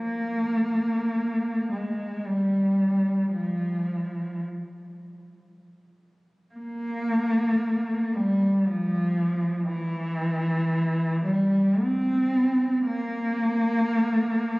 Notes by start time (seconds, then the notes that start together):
Already playing: A#3
1.72 G#3
2.27 G3
3.34 F3
6.55 A#3
8.16 G3
8.68 F3
9.70 E3
11.26 G3
11.83 C4
12.86 A#3